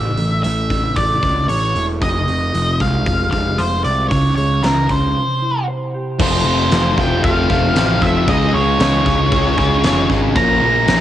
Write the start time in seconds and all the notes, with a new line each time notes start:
Already playing: A1 A2 E5
0.17 A1 E3, open hi-hat
0.43 A1 A3 E5, open hi-hat
0.70 kick, open hi-hat
0.96 A1 A3 D5, kick, open hi-hat
1.23 C#2 C#4, kick, open hi-hat
1.48 A1 A4 C#5, open hi-hat
1.75 E1 E4, open hi-hat
2.01 F1 F2 D#5, kick, open hi-hat
2.28 F1 C3, open hi-hat
2.54 F1 F3, open hi-hat
2.80 C2 G#3 F5, kick, open hi-hat
3.06 F1 F3, kick, open hi-hat
3.31 F1 G#3 F5, kick, open hi-hat
3.58 F1 F4 C5, open hi-hat
3.84 C2 C4 D5, open hi-hat
4.08 C#2 C#3 C#5, kick, open hi-hat
4.36 C#2 G#3 C#5, open hi-hat
4.63 C#2 G#3 A#4, snare, open hi-hat
4.89 C#4 C5, kick, open hi-hat
5.17 C3
5.42 E4
5.68 C5
5.94 G4
6.19 F1 F2 C3 F3 A3 C4 F4 C5, kick, crash
6.45 F1 F3 A3 C4 F4
6.70 F1 F2 C3 F3 A3 C4 F4, snare, crash
6.97 F1 F3 A3 C4 F4 G5, kick
7.22 F1 F3 A3 C4 F4 F5, kick, crash
7.49 F1 F2 C3 F3 A3 C4 F4, kick
7.75 A1 F3 A3 C4 F4, snare, crash
8.01 F1 F3 A3 C4 F4 E5, kick
8.26 C#2 C#3 G#3 C#4 F4 G#4 D#5, kick, crash
8.53 C#2 C#4 F4 G#4 C#5
8.79 C#2 C#3 G#3 C#4 F4 G#4, snare, crash
9.05 C#2 C#4 F4 G#4, kick
9.31 C#2 G#3 C#4 F4 G#4, kick, crash
9.57 C#2 C#3 G#3 C#4 F4 G#4, kick
9.83 F1 G#3 C#4 F4 G#4, snare, crash
10.09 G#1 C#4 F4 G#4, kick
10.35 A#1 A#2 F3 A#3 C#4 F4 A#4 A#5, kick, crash
10.62 A#1 A#3 C#4 F4 A#4
10.87 A#1 A#2 F3 A#3 C#4 F4 A#4, snare, crash